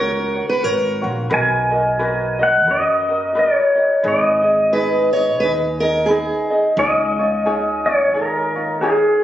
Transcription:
Already playing: upright bass C#2, ukulele F#4 A#4 C#5, steel-string acoustic guitar A#4, pedal steel guitar F#5
0.35 ukulele F#4 C#5
0.49 steel-string acoustic guitar B4
0.63 upright bass G#1, ukulele F#4 A#4 C#5, steel-string acoustic guitar A#4
1.02 upright bass A#1, ukulele F4 F#4 C#5
1.30 upright bass B1, ukulele F#4 A#4 B4 D#5
1.34 pedal steel guitar G#5
1.71 ukulele F#4 A#4 D#5
1.99 ukulele F#4 A#4 B4 D#5
2.39 ukulele F#4 A#4 D#5, pedal steel guitar F#5
2.67 upright bass F#2, ukulele F#4 A#4 B4 D#5, pedal steel guitar D#5
3.08 ukulele F#4 A#4 D#5
3.35 ukulele F#4 A#4 B4 D#5, pedal steel guitar C#5
3.75 ukulele F#4 A#4 D#5
4.03 upright bass G#1, ukulele D#4 G#4 B4 D#5
4.08 pedal steel guitar D#5
4.42 ukulele D#4 G#4 D#5
4.73 ukulele D#4 G#4 B4 D#5, steel-string acoustic guitar B4
5.13 ukulele D#4 G#4 D#5, steel-string acoustic guitar C#5
5.40 upright bass D#2, ukulele D#4 G#4 B4, steel-string acoustic guitar B4
5.45 ukulele D#5
5.80 ukulele D#4 G#4 D#5, steel-string acoustic guitar A#4
6.06 steel-string acoustic guitar G#4, ukulele B4
6.10 ukulele D#4 G#4 D#5
6.50 ukulele D#4 G#4 D#5
6.77 upright bass C#2, ukulele D#4 F4 G#4 C#5, pedal steel guitar D#5
7.19 ukulele D#4 F4 C#5
7.46 ukulele D#4 F4 G#4 C#5
7.86 ukulele D#4 F4 C#5, pedal steel guitar C#5
8.13 upright bass G#1, ukulele D#4 F4 G#4 C#5, pedal steel guitar A#4
8.55 ukulele D#4 F4 C#5
8.81 ukulele D#4 F4 G#4 C#5, pedal steel guitar G#4

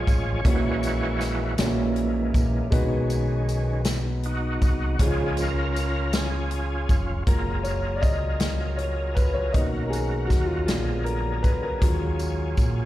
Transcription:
Already playing: grand piano A#2 A#3 C#4 F4 G#4 C#5, tonewheel organ F4 G#4 C#5
0.07 fingered electric bass A1, tonewheel organ F3 G#3 C#4, kick, closed hi-hat, tambourine
0.44 fingered electric bass A#1, grand piano A#2 A#3 C#4 E4 F#4 C#5, tonewheel organ E3 G#3 A#3 E4 F#4 C#5, kick, closed hi-hat
0.83 closed hi-hat, tambourine
1.21 snare, closed hi-hat, tambourine
1.57 fingered electric bass A#1, grand piano A#2 A3 C#4 E4 F#4 C#5, tonewheel organ E3 G#3 A#3, snare, closed hi-hat, tambourine
1.65 grand piano A#3
1.96 closed hi-hat
2.34 fingered electric bass A#1, kick, closed hi-hat, tambourine
2.70 fingered electric bass B1, grand piano B2 G#3 B3 D#4 F#4 B4, tonewheel organ D#3 G#3 C#4, kick, closed hi-hat
3.10 closed hi-hat, tambourine
3.49 closed hi-hat, tambourine
3.85 snare, closed hi-hat, tambourine
4.23 tonewheel organ D#4 F#4, closed hi-hat
4.62 fingered electric bass C2, kick, closed hi-hat, tambourine
4.99 fingered electric bass C#2, grand piano C#3 C#4 D#4 G#4, tonewheel organ F3 G#3 C#4 F4, kick, closed hi-hat
5.04 grand piano F4, tonewheel organ G#4
5.37 tonewheel organ C#4 F4 A#4, closed hi-hat, tambourine
5.76 closed hi-hat, tambourine
6.13 tonewheel organ C#4 F4 G#4, snare, closed hi-hat, tambourine
6.51 closed hi-hat
6.89 fingered electric bass F1, kick, closed hi-hat, tambourine
7.26 fingered electric bass F#1, tonewheel organ F#3 F4 G#4 A#4, grand piano G#3 A#3 F4 A#4, kick, closed hi-hat
7.64 grand piano C#5, closed hi-hat, tambourine
7.95 grand piano D5
8.01 fingered electric bass C#2, grand piano D#5, kick, closed hi-hat, tambourine
8.40 snare, closed hi-hat, tambourine
8.77 grand piano C#5, closed hi-hat
9.15 grand piano B4, kick, closed hi-hat, tambourine
9.34 grand piano C#5
9.53 fingered electric bass B1, tonewheel organ D#3 F#3 F#4, grand piano A#3 C#4 D#4 D#5, kick, closed hi-hat
9.86 grand piano G#4 A#4
9.93 closed hi-hat, tambourine
10.27 fingered electric bass D#2, grand piano F#4, kick, snare, tambourine
10.31 closed hi-hat
10.46 grand piano F4
10.66 fingered electric bass A#1, tonewheel organ D3 G#4, grand piano G#3 B3 D4 F4, snare, closed hi-hat, tambourine
11.04 grand piano A#4, closed hi-hat
11.43 grand piano B4, kick, closed hi-hat, tambourine
11.63 grand piano A#4
11.81 fingered electric bass D#2, tonewheel organ F#3 C#4 F4, grand piano F#3 G#3 C#4 F4, kick, closed hi-hat
12.19 closed hi-hat, tambourine
12.57 fingered electric bass A#2, kick, closed hi-hat, tambourine

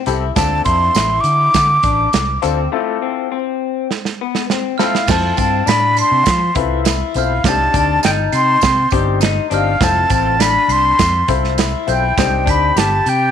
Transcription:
0.06 fingered electric bass C2, grand piano C4 E4 G4 A4, clean electric guitar E4, closed hi-hat, tambourine
0.36 fingered electric bass D2, grand piano C4 D4 F4 A4, clean electric guitar D4, flute A5, kick, snare, closed hi-hat, tambourine
0.65 fingered electric bass F2, clean electric guitar E4, flute C6, kick, closed hi-hat, tambourine
0.95 fingered electric bass A1, clean electric guitar E4, snare, closed hi-hat, tambourine
1.21 fingered electric bass D3, flute D6, closed hi-hat
1.25 tambourine
1.54 fingered electric bass D3, kick, snare, closed hi-hat, tambourine
1.83 fingered electric bass A1, clean electric guitar D4, kick, closed hi-hat, tambourine
2.13 fingered electric bass C2, snare, closed hi-hat, tambourine
2.42 fingered electric bass D2, clean electric guitar C4, grand piano C4 D4 F4 A4, closed hi-hat, tambourine
2.72 clean electric guitar A3, grand piano C4 E4 F4 A4
3.02 clean electric guitar C4
3.32 clean electric guitar C4
3.91 snare
4.05 snare
4.21 clean electric guitar B3
4.35 snare
4.50 clean electric guitar C4, snare
4.78 grand piano C4 E4 F4 A4, clean electric guitar E4, flute F5, glockenspiel F6, snare
4.95 snare
5.07 fingered electric bass F2, grand piano C4 E4 F4 A4 C5, flute A5, glockenspiel A6, kick, snare, crash, tambourine
5.37 fingered electric bass G2, clean electric guitar C4, flute A5, glockenspiel A6, kick, closed hi-hat, tambourine
5.66 fingered electric bass A2, clean electric guitar D4, flute B5, glockenspiel B6, snare, closed hi-hat, tambourine
5.97 flute C6, glockenspiel C7, closed hi-hat, tambourine
6.11 fingered electric bass C3
6.26 fingered electric bass F3, kick, snare, closed hi-hat, tambourine
6.55 fingered electric bass C2, grand piano C4 E4 F4 A4 B4, clean electric guitar E4, kick, closed hi-hat, tambourine
6.85 clean electric guitar E4, snare, closed hi-hat, tambourine
7.14 fingered electric bass B1, grand piano C4 E4 F4 A4 C5, glockenspiel F6, closed hi-hat, tambourine
7.20 flute F5
7.44 fingered electric bass C2, grand piano C4 D4 D#4 G4 C5, glockenspiel A6, kick, snare, closed hi-hat, tambourine
7.49 flute A5
7.74 fingered electric bass D2, clean electric guitar D4, glockenspiel A6, kick, closed hi-hat, tambourine
7.79 flute A5
8.03 fingered electric bass G1, clean electric guitar D#4, flute G5, glockenspiel G6, snare, closed hi-hat, tambourine
8.32 fingered electric bass C3, flute C6, glockenspiel C7, closed hi-hat, tambourine
8.61 fingered electric bass C3, kick, snare, closed hi-hat, tambourine
8.90 fingered electric bass G1, grand piano C4 D4 D#4 G4 C5, clean electric guitar G4, kick, closed hi-hat, tambourine
9.21 clean electric guitar D#4, snare, closed hi-hat, tambourine
9.50 fingered electric bass G1, grand piano C4 D4 D#4 G4 D#5, clean electric guitar D4, glockenspiel F6, closed hi-hat, tambourine
9.56 flute F5
9.80 fingered electric bass F1, grand piano C4 E4 F4 A4 C5, flute A5, glockenspiel A6, kick, snare, closed hi-hat, tambourine
10.10 fingered electric bass A1, clean electric guitar C4, glockenspiel A6, kick, closed hi-hat, tambourine
10.14 flute A5
10.39 clean electric guitar D4, flute B5, glockenspiel B6, snare, closed hi-hat, tambourine
10.68 fingered electric bass C2, flute C6, glockenspiel C7, closed hi-hat, tambourine
10.99 fingered electric bass F2, kick, snare, closed hi-hat, tambourine
11.28 fingered electric bass C2, grand piano C4 E4 F4 A4 C5, clean electric guitar E4, kick, closed hi-hat, tambourine
11.44 snare
11.58 clean electric guitar E4, snare, closed hi-hat, tambourine
11.87 fingered electric bass B1, grand piano C4 E4 F4 A4 C5, flute G5, glockenspiel G6, closed hi-hat, tambourine
12.17 fingered electric bass C2, grand piano C4 D4 D#4 G4 C5, kick, snare, closed hi-hat, tambourine
12.46 fingered electric bass D2, clean electric guitar D4, glockenspiel B6, kick, closed hi-hat, tambourine
12.50 flute B5
12.76 fingered electric bass G1, clean electric guitar G4, flute A5, glockenspiel A6, snare, closed hi-hat, tambourine
13.06 fingered electric bass C3, flute G5, glockenspiel G6, closed hi-hat, tambourine

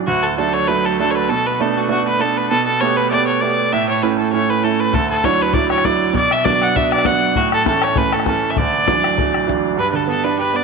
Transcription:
0.07 grand piano D2, fiddle F#4
0.23 fiddle A4
0.36 grand piano F#3 A3 D4, fiddle A4
0.53 fiddle C#5
0.68 grand piano F#3 A3 D4, fiddle B4
0.85 fiddle A4
0.99 grand piano F#3 A3 D4, fiddle A4
1.11 fiddle C#5
1.15 fiddle B4
1.29 grand piano B2, fiddle A4
1.46 fiddle B4
1.60 grand piano A3 B3 D4, fiddle A4
1.77 fiddle F#4
1.88 grand piano A3 B3 D4, fiddle F#4
2.07 fiddle B4
2.19 grand piano A3 B3 D4, fiddle A4
2.37 fiddle B4
2.48 grand piano B2, fiddle A4 B4
2.66 fiddle A4
2.81 grand piano A3 B3 G4, fiddle C#5
2.97 fiddle B4
3.10 grand piano A3 B3 G4, fiddle D5
3.26 fiddle C#5
3.41 grand piano A3 B3 G4, fiddle D5
3.73 grand piano A2, fiddle E5
3.89 fiddle C#5
4.03 grand piano A3 C#4 E4, fiddle B4
4.18 fiddle A4
4.32 grand piano A3 C#4 E4, fiddle C#5
4.50 fiddle B4
4.64 grand piano A3 C#4 E4, fiddle A4
4.80 fiddle B4
4.93 grand piano D2, fiddle A4, bodhran
5.10 fiddle A4
5.24 grand piano F#3 D4 E4, fiddle C#5, bodhran
5.42 fiddle B4
5.53 grand piano F#3 D4 E4, fiddle D5, bodhran
5.70 fiddle C#5, bodhran
5.78 bodhran
5.84 grand piano F#3 D4 E4, fiddle D5, bodhran
6.13 grand piano B2, fiddle D5, bodhran
6.31 fiddle E5, bodhran
6.44 grand piano F#3 B3 D4, fiddle D5, bodhran
6.62 fiddle F#5, bodhran
6.75 grand piano F#3 B3 D4, fiddle E5, bodhran
6.92 fiddle D5, bodhran
6.99 bodhran
7.05 grand piano F#3 B3 D4, fiddle F#5, bodhran
7.35 grand piano A2, fiddle F#4, bodhran
7.52 fiddle A4, bodhran
7.66 grand piano E3 A3 C#4, fiddle A4, bodhran
7.82 fiddle C#5, bodhran
7.96 grand piano E3 A3 C#4, fiddle B4, bodhran
8.13 fiddle A4, bodhran
8.20 bodhran
8.26 grand piano E3 A3 C#4, fiddle A4, bodhran
8.50 fiddle E5
8.56 grand piano D2, fiddle D5, bodhran
8.88 grand piano E3 F#3 D4, bodhran
9.04 bodhran
9.17 grand piano E3 F#3 D4, bodhran
9.34 bodhran
9.47 grand piano E3 F#3 D4, bodhran
9.77 grand piano G2, fiddle B4
9.91 grand piano D3, fiddle B4
9.95 fiddle A4
10.07 grand piano B3, fiddle A4
10.24 grand piano D4, fiddle B4
10.38 grand piano G4, fiddle B4
10.54 grand piano B3, fiddle D5

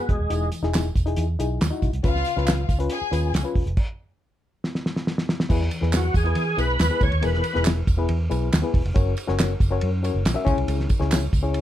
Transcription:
Already playing: reed electric piano B3
0.00 tonewheel organ B3, reed electric piano F#4 G#4
0.09 fingered electric bass E1, tonewheel organ G#3, kick, closed hi-hat
0.19 fingered electric bass D#1
0.30 fingered electric bass E1, reed electric piano E3 D#4 E4 G#4, closed hi-hat, tambourine
0.52 closed hi-hat, tambourine
0.62 fingered electric bass E1, reed electric piano D#4 E4 G#4, snare
0.74 snare, clap, closed hi-hat, tambourine
0.95 fingered electric bass E1, kick, closed hi-hat, tambourine
1.06 reed electric piano D#4 E4 G#4, closed hi-hat
1.16 fingered electric bass E2, closed hi-hat, tambourine
1.39 fingered electric bass B1, reed electric piano D#4 E4 G#4, closed hi-hat, tambourine
1.61 fingered electric bass D#2, snare, clap, closed hi-hat, tambourine
1.71 reed electric piano D#4 E4 F#4
1.82 fingered electric bass B1, kick, closed hi-hat, tambourine
1.93 fingered electric bass C2, closed hi-hat
2.03 fingered electric bass C#2, reed electric piano C#3 C#4 F4 B4, string section F4 F5, kick, closed hi-hat, tambourine
2.16 snare
2.25 closed hi-hat, tambourine
2.36 fingered electric bass C#2, reed electric piano C#4 F4 B4, snare
2.47 snare, clap, closed hi-hat, tambourine
2.69 fingered electric bass C#2, kick, closed hi-hat, tambourine
2.79 reed electric piano C#4 F4 B4, closed hi-hat
2.90 string section G#4 G#5, closed hi-hat
3.01 muted fingered electric bass stroke
3.11 fingered electric bass D#2, reed electric piano C#4 F4 B4, closed hi-hat, tambourine
3.33 fingered electric bass C#2, snare, clap, closed hi-hat, tambourine
3.43 reed electric piano C#4 F4 B4
3.55 fingered electric bass E1, kick, open hi-hat
3.66 fingered electric bass F1, closed hi-hat
3.77 kick, crash
4.64 snare
4.75 snare
4.86 snare
4.96 snare
5.07 snare
5.18 snare
5.29 snare
5.40 snare
5.49 fingered electric bass E2, reed electric piano E3 B3 E4 G#4 B4, kick, crash, tambourine
5.62 snare
5.71 ride, tambourine
5.81 fingered electric bass E2, reed electric piano B3 E4 G#4 B4, snare
5.93 tonewheel organ F#4, snare, clap, ride, tambourine
6.14 fingered electric bass E2, tonewheel organ G#4, kick, ride, tambourine
6.25 reed electric piano B3 E4 G#4 B4, ride
6.35 fingered electric bass E3, ride, tambourine
6.57 fingered electric bass B1, reed electric piano B3 E4 G#4 B4, tonewheel organ B4, ride, tambourine
6.79 fingered electric bass D#2, snare, clap, ride, tambourine
6.90 reed electric piano B3 E4 G#4 B4
7.00 fingered electric bass D2, tonewheel organ C#5, kick, ride, tambourine
7.12 fingered electric bass D#2, ride
7.22 fingered electric bass E1, reed electric piano E3 B3 E4 G#4 A#4, tonewheel organ B4, ride, tambourine
7.34 snare
7.44 ride, tambourine
7.54 fingered electric bass E1, reed electric piano B3 E4 G#4 B4, snare
7.65 snare, clap, ride, tambourine
7.87 fingered electric bass E1, kick, ride, tambourine
7.97 reed electric piano B3 E4 G#4 B4
8.09 fingered electric bass E2, ride
8.29 fingered electric bass B1, reed electric piano B3 E4 G#4 B4, ride, tambourine
8.53 fingered electric bass D#2, snare, clap, ride, tambourine
8.62 reed electric piano B3 E4 G#4 B4
8.74 fingered electric bass E1, kick, open hi-hat, ride
8.85 fingered electric bass F1, ride
8.94 fingered electric bass F#1, reed electric piano C#4 F#4 A#4 C#5, kick, hi-hat pedal, ride, tambourine
9.17 ride, tambourine
9.27 fingered electric bass F#1, reed electric piano C#4 F#4 A#4 C#5, snare
9.39 snare, clap, ride, tambourine
9.60 fingered electric bass F#1, kick, ride, tambourine
9.70 reed electric piano C#4 F#4 A#4 C#5
9.81 fingered electric bass F#2, ride
10.03 reed electric piano C#4 F#4 A#4 C#5, ride, tambourine
10.14 fingered electric bass F#1
10.25 fingered electric bass A#1, snare, clap, ride, tambourine
10.34 reed electric piano C#4 F#4 A#4 E5
10.45 fingered electric bass C#2, reed electric piano C#3 C#4 E4 G#4 C#5, kick, ride, tambourine
10.57 fingered electric bass C2, ride
10.68 fingered electric bass C#2, ride, tambourine
10.80 snare
10.89 kick, ride, tambourine
10.99 fingered electric bass C#2, reed electric piano C#4 E4 G#4 C#5, snare
11.11 snare, clap, ride, tambourine
11.33 fingered electric bass C#2, kick, ride, tambourine
11.43 reed electric piano C#4 E4 G#4 C#5
11.54 ride, tambourine

